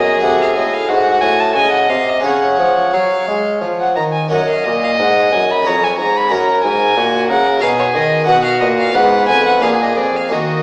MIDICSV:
0, 0, Header, 1, 5, 480
1, 0, Start_track
1, 0, Key_signature, 6, "major"
1, 0, Tempo, 655738
1, 174, Time_signature, 3, 2, 24, 8
1, 1135, Tempo, 688863
1, 3535, Tempo, 657895
1, 6415, Tempo, 696056
1, 7577, End_track
2, 0, Start_track
2, 0, Title_t, "Violin"
2, 0, Program_c, 0, 40
2, 0, Note_on_c, 0, 75, 95
2, 168, Note_off_c, 0, 75, 0
2, 172, Note_on_c, 0, 78, 91
2, 290, Note_off_c, 0, 78, 0
2, 304, Note_on_c, 0, 77, 80
2, 349, Note_off_c, 0, 77, 0
2, 416, Note_on_c, 0, 75, 85
2, 537, Note_on_c, 0, 77, 95
2, 548, Note_off_c, 0, 75, 0
2, 647, Note_on_c, 0, 78, 106
2, 658, Note_off_c, 0, 77, 0
2, 886, Note_on_c, 0, 80, 105
2, 897, Note_off_c, 0, 78, 0
2, 1026, Note_on_c, 0, 81, 96
2, 1037, Note_off_c, 0, 80, 0
2, 1134, Note_off_c, 0, 81, 0
2, 1138, Note_on_c, 0, 80, 100
2, 1252, Note_off_c, 0, 80, 0
2, 1260, Note_on_c, 0, 78, 87
2, 1376, Note_on_c, 0, 77, 86
2, 1386, Note_off_c, 0, 78, 0
2, 1510, Note_on_c, 0, 75, 88
2, 1521, Note_off_c, 0, 77, 0
2, 1607, Note_off_c, 0, 75, 0
2, 1611, Note_on_c, 0, 78, 87
2, 2094, Note_on_c, 0, 77, 82
2, 2104, Note_off_c, 0, 78, 0
2, 2572, Note_off_c, 0, 77, 0
2, 2703, Note_on_c, 0, 78, 78
2, 2811, Note_off_c, 0, 78, 0
2, 2815, Note_on_c, 0, 82, 85
2, 2864, Note_off_c, 0, 82, 0
2, 2932, Note_on_c, 0, 80, 77
2, 3053, Note_off_c, 0, 80, 0
2, 3060, Note_on_c, 0, 78, 79
2, 3177, Note_off_c, 0, 78, 0
2, 3187, Note_on_c, 0, 77, 71
2, 3291, Note_on_c, 0, 75, 78
2, 3301, Note_off_c, 0, 77, 0
2, 3413, Note_off_c, 0, 75, 0
2, 3426, Note_on_c, 0, 77, 78
2, 3471, Note_off_c, 0, 77, 0
2, 3533, Note_on_c, 0, 78, 90
2, 3776, Note_on_c, 0, 80, 88
2, 3787, Note_off_c, 0, 78, 0
2, 3910, Note_on_c, 0, 83, 86
2, 3921, Note_off_c, 0, 80, 0
2, 4021, Note_on_c, 0, 82, 98
2, 4031, Note_off_c, 0, 83, 0
2, 4152, Note_on_c, 0, 80, 90
2, 4163, Note_off_c, 0, 82, 0
2, 4252, Note_off_c, 0, 80, 0
2, 4256, Note_on_c, 0, 82, 92
2, 4393, Note_on_c, 0, 83, 98
2, 4404, Note_off_c, 0, 82, 0
2, 4495, Note_on_c, 0, 82, 88
2, 4506, Note_off_c, 0, 83, 0
2, 4731, Note_off_c, 0, 82, 0
2, 4735, Note_on_c, 0, 80, 93
2, 5201, Note_off_c, 0, 80, 0
2, 5209, Note_on_c, 0, 78, 103
2, 5439, Note_off_c, 0, 78, 0
2, 5444, Note_on_c, 0, 77, 104
2, 5492, Note_off_c, 0, 77, 0
2, 5576, Note_on_c, 0, 73, 85
2, 5622, Note_off_c, 0, 73, 0
2, 5677, Note_on_c, 0, 75, 97
2, 5917, Note_off_c, 0, 75, 0
2, 5922, Note_on_c, 0, 78, 107
2, 6043, Note_off_c, 0, 78, 0
2, 6057, Note_on_c, 0, 77, 89
2, 6165, Note_off_c, 0, 77, 0
2, 6169, Note_on_c, 0, 75, 92
2, 6218, Note_off_c, 0, 75, 0
2, 6302, Note_on_c, 0, 77, 103
2, 6421, Note_on_c, 0, 78, 109
2, 6432, Note_off_c, 0, 77, 0
2, 6649, Note_off_c, 0, 78, 0
2, 6653, Note_on_c, 0, 80, 112
2, 6767, Note_off_c, 0, 80, 0
2, 6772, Note_on_c, 0, 78, 92
2, 6877, Note_off_c, 0, 78, 0
2, 6881, Note_on_c, 0, 77, 96
2, 6930, Note_off_c, 0, 77, 0
2, 7020, Note_on_c, 0, 75, 83
2, 7120, Note_on_c, 0, 74, 89
2, 7130, Note_off_c, 0, 75, 0
2, 7254, Note_on_c, 0, 77, 81
2, 7265, Note_off_c, 0, 74, 0
2, 7368, Note_on_c, 0, 75, 84
2, 7378, Note_off_c, 0, 77, 0
2, 7577, Note_off_c, 0, 75, 0
2, 7577, End_track
3, 0, Start_track
3, 0, Title_t, "Violin"
3, 0, Program_c, 1, 40
3, 0, Note_on_c, 1, 68, 80
3, 657, Note_on_c, 1, 66, 87
3, 668, Note_off_c, 1, 68, 0
3, 1138, Note_off_c, 1, 66, 0
3, 1146, Note_on_c, 1, 75, 83
3, 1609, Note_off_c, 1, 75, 0
3, 1622, Note_on_c, 1, 73, 81
3, 2794, Note_off_c, 1, 73, 0
3, 3060, Note_on_c, 1, 75, 95
3, 4024, Note_on_c, 1, 73, 72
3, 4035, Note_off_c, 1, 75, 0
3, 4495, Note_off_c, 1, 73, 0
3, 4499, Note_on_c, 1, 70, 81
3, 4981, Note_on_c, 1, 66, 75
3, 4992, Note_off_c, 1, 70, 0
3, 5209, Note_on_c, 1, 70, 79
3, 5220, Note_off_c, 1, 66, 0
3, 5448, Note_on_c, 1, 68, 86
3, 5459, Note_off_c, 1, 70, 0
3, 5924, Note_off_c, 1, 68, 0
3, 5928, Note_on_c, 1, 66, 86
3, 6405, Note_off_c, 1, 66, 0
3, 6409, Note_on_c, 1, 71, 97
3, 6891, Note_on_c, 1, 68, 81
3, 6902, Note_off_c, 1, 71, 0
3, 7367, Note_off_c, 1, 68, 0
3, 7371, Note_on_c, 1, 66, 64
3, 7577, Note_off_c, 1, 66, 0
3, 7577, End_track
4, 0, Start_track
4, 0, Title_t, "Harpsichord"
4, 0, Program_c, 2, 6
4, 0, Note_on_c, 2, 42, 61
4, 0, Note_on_c, 2, 59, 52
4, 0, Note_on_c, 2, 66, 54
4, 0, Note_on_c, 2, 71, 52
4, 139, Note_on_c, 2, 63, 53
4, 141, Note_off_c, 2, 66, 0
4, 146, Note_off_c, 2, 59, 0
4, 148, Note_off_c, 2, 42, 0
4, 150, Note_on_c, 2, 66, 54
4, 156, Note_off_c, 2, 71, 0
4, 163, Note_on_c, 2, 69, 57
4, 173, Note_on_c, 2, 48, 63
4, 388, Note_off_c, 2, 48, 0
4, 411, Note_on_c, 2, 45, 68
4, 626, Note_off_c, 2, 45, 0
4, 652, Note_on_c, 2, 44, 62
4, 867, Note_off_c, 2, 44, 0
4, 893, Note_on_c, 2, 45, 61
4, 1112, Note_off_c, 2, 45, 0
4, 1140, Note_on_c, 2, 49, 63
4, 1351, Note_off_c, 2, 49, 0
4, 1374, Note_on_c, 2, 48, 59
4, 1568, Note_off_c, 2, 63, 0
4, 1573, Note_off_c, 2, 66, 0
4, 1580, Note_off_c, 2, 69, 0
4, 1583, Note_on_c, 2, 61, 49
4, 1589, Note_on_c, 2, 68, 48
4, 1590, Note_off_c, 2, 48, 0
4, 1602, Note_on_c, 2, 73, 47
4, 1609, Note_on_c, 2, 49, 57
4, 1828, Note_off_c, 2, 49, 0
4, 1852, Note_on_c, 2, 53, 54
4, 2070, Note_off_c, 2, 53, 0
4, 2102, Note_on_c, 2, 54, 52
4, 2314, Note_off_c, 2, 54, 0
4, 2337, Note_on_c, 2, 56, 53
4, 2550, Note_off_c, 2, 56, 0
4, 2575, Note_on_c, 2, 53, 51
4, 2791, Note_off_c, 2, 53, 0
4, 2818, Note_on_c, 2, 51, 49
4, 3014, Note_off_c, 2, 61, 0
4, 3018, Note_off_c, 2, 68, 0
4, 3024, Note_off_c, 2, 73, 0
4, 3035, Note_off_c, 2, 51, 0
4, 3036, Note_on_c, 2, 61, 46
4, 3045, Note_on_c, 2, 70, 48
4, 3056, Note_on_c, 2, 73, 49
4, 3064, Note_on_c, 2, 42, 53
4, 3278, Note_off_c, 2, 42, 0
4, 3305, Note_on_c, 2, 46, 58
4, 3510, Note_off_c, 2, 61, 0
4, 3515, Note_off_c, 2, 46, 0
4, 3537, Note_on_c, 2, 44, 56
4, 3755, Note_off_c, 2, 44, 0
4, 3778, Note_on_c, 2, 42, 55
4, 3984, Note_off_c, 2, 70, 0
4, 3990, Note_off_c, 2, 73, 0
4, 3992, Note_on_c, 2, 61, 47
4, 3995, Note_off_c, 2, 42, 0
4, 4000, Note_on_c, 2, 68, 47
4, 4013, Note_on_c, 2, 73, 47
4, 4025, Note_on_c, 2, 41, 55
4, 4239, Note_off_c, 2, 41, 0
4, 4264, Note_on_c, 2, 44, 56
4, 4464, Note_off_c, 2, 61, 0
4, 4473, Note_on_c, 2, 61, 49
4, 4474, Note_off_c, 2, 68, 0
4, 4477, Note_off_c, 2, 44, 0
4, 4481, Note_off_c, 2, 73, 0
4, 4484, Note_on_c, 2, 66, 53
4, 4496, Note_on_c, 2, 73, 51
4, 4505, Note_on_c, 2, 42, 59
4, 4716, Note_off_c, 2, 42, 0
4, 4716, Note_off_c, 2, 61, 0
4, 4741, Note_on_c, 2, 44, 64
4, 4952, Note_off_c, 2, 44, 0
4, 4978, Note_on_c, 2, 46, 60
4, 5190, Note_off_c, 2, 46, 0
4, 5216, Note_on_c, 2, 49, 63
4, 5413, Note_off_c, 2, 66, 0
4, 5419, Note_off_c, 2, 73, 0
4, 5419, Note_on_c, 2, 63, 58
4, 5428, Note_off_c, 2, 49, 0
4, 5429, Note_on_c, 2, 66, 60
4, 5441, Note_on_c, 2, 71, 60
4, 5452, Note_on_c, 2, 47, 67
4, 5665, Note_off_c, 2, 47, 0
4, 5690, Note_on_c, 2, 51, 66
4, 5892, Note_off_c, 2, 63, 0
4, 5901, Note_on_c, 2, 63, 60
4, 5903, Note_off_c, 2, 66, 0
4, 5905, Note_off_c, 2, 51, 0
4, 5909, Note_off_c, 2, 71, 0
4, 5914, Note_on_c, 2, 66, 58
4, 5923, Note_on_c, 2, 71, 59
4, 5934, Note_on_c, 2, 47, 67
4, 6149, Note_off_c, 2, 47, 0
4, 6173, Note_on_c, 2, 46, 70
4, 6386, Note_on_c, 2, 59, 56
4, 6388, Note_off_c, 2, 63, 0
4, 6393, Note_off_c, 2, 46, 0
4, 6394, Note_off_c, 2, 66, 0
4, 6396, Note_on_c, 2, 65, 62
4, 6399, Note_off_c, 2, 71, 0
4, 6407, Note_on_c, 2, 71, 57
4, 6419, Note_on_c, 2, 44, 64
4, 6628, Note_off_c, 2, 44, 0
4, 6654, Note_on_c, 2, 41, 64
4, 6856, Note_off_c, 2, 59, 0
4, 6861, Note_off_c, 2, 65, 0
4, 6861, Note_on_c, 2, 58, 58
4, 6864, Note_off_c, 2, 41, 0
4, 6867, Note_off_c, 2, 71, 0
4, 6870, Note_on_c, 2, 62, 53
4, 6881, Note_on_c, 2, 68, 53
4, 6890, Note_on_c, 2, 46, 63
4, 7103, Note_off_c, 2, 46, 0
4, 7123, Note_on_c, 2, 41, 54
4, 7330, Note_off_c, 2, 58, 0
4, 7339, Note_on_c, 2, 58, 49
4, 7343, Note_off_c, 2, 41, 0
4, 7345, Note_off_c, 2, 62, 0
4, 7349, Note_on_c, 2, 63, 51
4, 7351, Note_off_c, 2, 68, 0
4, 7360, Note_on_c, 2, 66, 47
4, 7370, Note_on_c, 2, 51, 55
4, 7577, Note_off_c, 2, 51, 0
4, 7577, Note_off_c, 2, 58, 0
4, 7577, Note_off_c, 2, 63, 0
4, 7577, Note_off_c, 2, 66, 0
4, 7577, End_track
5, 0, Start_track
5, 0, Title_t, "Bassoon"
5, 0, Program_c, 3, 70
5, 0, Note_on_c, 3, 42, 68
5, 166, Note_off_c, 3, 42, 0
5, 171, Note_on_c, 3, 48, 81
5, 406, Note_off_c, 3, 48, 0
5, 413, Note_on_c, 3, 45, 73
5, 646, Note_off_c, 3, 45, 0
5, 650, Note_on_c, 3, 44, 78
5, 886, Note_off_c, 3, 44, 0
5, 889, Note_on_c, 3, 45, 72
5, 1138, Note_on_c, 3, 49, 71
5, 1148, Note_off_c, 3, 45, 0
5, 1370, Note_off_c, 3, 49, 0
5, 1375, Note_on_c, 3, 48, 68
5, 1609, Note_off_c, 3, 48, 0
5, 1619, Note_on_c, 3, 49, 76
5, 1852, Note_off_c, 3, 49, 0
5, 1861, Note_on_c, 3, 53, 62
5, 2093, Note_off_c, 3, 53, 0
5, 2102, Note_on_c, 3, 54, 67
5, 2333, Note_off_c, 3, 54, 0
5, 2341, Note_on_c, 3, 56, 61
5, 2569, Note_off_c, 3, 56, 0
5, 2573, Note_on_c, 3, 53, 61
5, 2813, Note_on_c, 3, 51, 62
5, 2823, Note_off_c, 3, 53, 0
5, 3048, Note_off_c, 3, 51, 0
5, 3052, Note_on_c, 3, 42, 66
5, 3279, Note_off_c, 3, 42, 0
5, 3298, Note_on_c, 3, 46, 63
5, 3530, Note_off_c, 3, 46, 0
5, 3534, Note_on_c, 3, 44, 66
5, 3772, Note_on_c, 3, 42, 63
5, 3783, Note_off_c, 3, 44, 0
5, 4017, Note_on_c, 3, 41, 64
5, 4028, Note_off_c, 3, 42, 0
5, 4256, Note_on_c, 3, 44, 63
5, 4267, Note_off_c, 3, 41, 0
5, 4492, Note_off_c, 3, 44, 0
5, 4496, Note_on_c, 3, 42, 73
5, 4731, Note_off_c, 3, 42, 0
5, 4736, Note_on_c, 3, 44, 68
5, 4969, Note_off_c, 3, 44, 0
5, 4975, Note_on_c, 3, 46, 74
5, 5207, Note_off_c, 3, 46, 0
5, 5217, Note_on_c, 3, 49, 71
5, 5447, Note_off_c, 3, 49, 0
5, 5456, Note_on_c, 3, 47, 71
5, 5685, Note_off_c, 3, 47, 0
5, 5689, Note_on_c, 3, 51, 76
5, 5923, Note_off_c, 3, 51, 0
5, 5929, Note_on_c, 3, 47, 80
5, 6174, Note_on_c, 3, 46, 78
5, 6185, Note_off_c, 3, 47, 0
5, 6412, Note_off_c, 3, 46, 0
5, 6416, Note_on_c, 3, 44, 83
5, 6645, Note_off_c, 3, 44, 0
5, 6654, Note_on_c, 3, 41, 73
5, 6886, Note_on_c, 3, 46, 72
5, 6896, Note_off_c, 3, 41, 0
5, 7115, Note_off_c, 3, 46, 0
5, 7119, Note_on_c, 3, 41, 69
5, 7366, Note_on_c, 3, 51, 67
5, 7376, Note_off_c, 3, 41, 0
5, 7577, Note_off_c, 3, 51, 0
5, 7577, End_track
0, 0, End_of_file